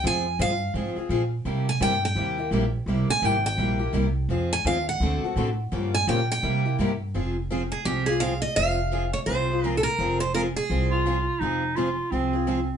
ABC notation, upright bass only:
X:1
M:4/4
L:1/8
Q:"Swing" 1/4=169
K:Fm
V:1 name="Upright bass" clef=bass
F,,2 G,,2 A,, z B,,2 | C,2 G,,2 ^D,,2 B,,,2 | C,, z A,,,2 B,,,2 C,,2 | F,,2 E,,2 =D,, z =A,,2 |
G,,2 B,,2 C,2 G,,2 | F,,,4 C,,4 | F,,,4 C,,4 | F,,,4 C,,4 |
F,,,4 C,,4 |]